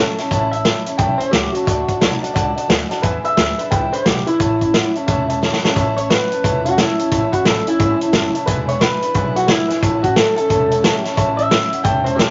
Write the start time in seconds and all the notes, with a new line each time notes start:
Already playing: E3 A4
0.00 A3 C#4 E4 A5
0.18 A3 C#4 E4 C#5 E5 A5, snare, closed hi-hat
0.30 A1 A2 E3 A3 C#4 E4 C#5 E5 A5, kick, closed hi-hat
0.51 A3 C#4 E4 C#5 E5 A5, closed hi-hat
0.64 E3 A3 C#4 E4 C#5 E5 A5, snare, closed hi-hat
0.86 A3 C#4 E4 C#5 E5 A5, muted upright bass stroke, closed hi-hat
0.98 B1 A2 E3 A3 C#4 E4 C#5 E5 G5 A5, kick, closed hi-hat
1.18 A3 C#4 E4 C5 C#5 E5, muted upright bass stroke, closed hi-hat
1.22 G#5
1.31 C#2 E3 E4 G4 C#5 E5, snare, closed hi-hat
1.35 F#5
1.52 A3 C#4 E4 F#4 C#5 E5, muted upright bass stroke, closed hi-hat
1.56 A5
1.65 D2 D3 A3 D4 F#4 D5 F#5, kick, closed hi-hat
1.69 A5
1.88 A3 D4 F#4 D5 F#5 A5, kick, closed hi-hat
2.00 B1 D3 A3 D4 F#4 D5 F#5 A5, snare, closed hi-hat
2.21 A3 D4 F#4 D5 F#5 A5, closed hi-hat
2.34 C#2 D3 A3 D4 F#4 D5 F#5 A5, kick, closed hi-hat
2.55 A3 D4 F#4 D5 F#5 A5, muted upright bass stroke, closed hi-hat
2.67 D2 D3 A3 D4 F#4 D5 F#5 G#5, snare, closed hi-hat
2.89 A3 D4 F#4 D5 F#5 A5, snare, closed hi-hat
3.02 E2 B2 E3 G#3 D4 E4 B4 E5 G#5, kick, closed hi-hat
3.23 E3 G#3 D4 E4 B4 E5 G#5, muted upright bass stroke, closed hi-hat
3.37 D2 E3 G#3 D4 E4 B4 E5 G#5, snare, closed hi-hat
3.58 E3 G#3 D4 E4 B4 E5 B5, muted upright bass stroke, closed hi-hat
3.71 C#2 E2 B2 E3 G#3 D4 E4 B4 E5 G5 B5, kick, closed hi-hat
3.92 E3 G#3 D4 E4 B4 C5 E5 B5, muted upright bass stroke, closed hi-hat
4.04 B1 E3 G#3 D4 E4 G4 B4 E5 F#5, snare, closed hi-hat
4.26 E3 G#3 D4 E4 B4 E5 B5, muted upright bass stroke, closed hi-hat
4.39 A1 A2 E3 A3 C#4 E4 C#5 E5 A5, kick, closed hi-hat
4.60 A3 C#4 E4 C#5 E5 A5, kick, closed hi-hat
4.73 E3 A3 C#4 E4 C#5 E5 F#5, snare, closed hi-hat
4.94 A3 C#4 E4 C#5 E5 A5, muted upright bass stroke, closed hi-hat
5.06 E1 A2 E3 A3 C#4 E4 C#5 E5 A5, kick, closed hi-hat
5.28 A3 C#4 E4 C#5 E5 A5, closed hi-hat
5.41 E3 A3 C#4 E4 C#5 E5, snare
5.53 snare
5.62 A3 C#4 E4 C#5 E5 A5, muted upright bass stroke, snare
5.75 A1 A2 E3 A3 C#4 E4 C#5 E5 A5, kick, closed hi-hat
5.96 A3 C#4 E4 C#5 E5 A5, closed hi-hat
6.09 E3 C#4 B4 C#5 E5 F#5, snare, closed hi-hat
6.31 A3 C#4 E4 C#5 E5 A5, muted upright bass stroke, closed hi-hat
6.43 E1 A2 E3 A3 C#4 E4 C#5 E5 A5, kick, closed hi-hat
6.64 A3 C#4 E4 F#4 C#5 E5 A5, closed hi-hat
6.78 E3 A3 C#4 E4 E5 A5, snare, closed hi-hat
6.98 C#4 E4 C#5 E5 A5, muted upright bass stroke, closed hi-hat
7.02 A3
7.10 A1 A2 E3 A3 C#4 E4 C#5 E5 A5, kick, closed hi-hat
7.32 A3 C#4 E4 F#4 C#5 E5 B5, muted upright bass stroke, kick, closed hi-hat
7.44 A1 C#4 A4 C#5 E5 B5, snare, closed hi-hat
7.66 A3 C#4 E4 C#5 E5 G#5, muted upright bass stroke, closed hi-hat
7.78 G#1 A2 E3 A3 C#4 E4 C#5 E5 G#5, kick, closed hi-hat
8.00 A3 C#4 E4 C#5 E5 A5, muted upright bass stroke, closed hi-hat
8.12 F#1 E3 A3 C#4 E4 C#5 E5 A5, snare, closed hi-hat
8.34 A3 C#4 E4 C#5 E5 A5, muted upright bass stroke, closed hi-hat
8.46 E1 E2 B2 E3 G#3 D4 E4 B4 E5 G#5, kick, closed hi-hat
8.68 G#3 D4 E4 B4 C#5 E5 G#5, closed hi-hat
8.72 E3
8.80 E3 G#3 D4 B4 E5 G#5, snare, closed hi-hat
9.02 E3 G#3 D4 E4 B4 E5 B5, muted upright bass stroke, closed hi-hat
9.14 B1 E2 B2 E3 G#3 D4 E4 B4 E5 G#5, kick, closed hi-hat
9.35 G#3 D4 E4 F#4 B4 E5 G#5, closed hi-hat
9.40 E3
9.47 G#3 D4 E4 B4 E5 F#5, snare, closed hi-hat
9.68 G#3 D4 E4 B4 E5 G#5, muted upright bass stroke, snare, closed hi-hat
9.72 E3
9.80 A1 A2 E3 A3 C#4 E4 C#5 E5 A5, kick, closed hi-hat
10.02 C#4 E4 F#4 C#5 E5 A5, kick, closed hi-hat
10.06 A3
10.15 E3 A3 C#4 E4 A4 C#5 E5 A5, snare, closed hi-hat
10.36 A3 C#4 E4 A4 C#5 E5 G#5, muted upright bass stroke, closed hi-hat
10.48 E1 A2 E3 A3 C#4 E4 C#5 E5 A5, kick, closed hi-hat
10.70 A3 C#4 E4 C#5 E5 A5, closed hi-hat
10.82 E3 A3 C#4 E4 C#5 E5 A5, snare, closed hi-hat
11.03 A3 C#4 E4 C#5 E5 A5, snare, closed hi-hat
11.15 A1 A2 E3 A3 C#4 E4 C#5 E5 A5, kick, closed hi-hat
11.37 A3 C#4 E4 C#5 E5 A5, closed hi-hat
11.48 E3 A3 C#4 E4 C#5 E5 B5, snare, closed hi-hat
11.71 A3 C#4 E4 C#5 E5 F#5, muted upright bass stroke, closed hi-hat
11.83 E1 A2 E3 A3 C#4 E4 C#5 E5 G5 A5, kick, closed hi-hat
12.04 A3 C#4 E4 C5 C#5 E5 A5, closed hi-hat
12.16 E3 A3 C#4 E4 G4 C#5 E5 A5, snare, closed hi-hat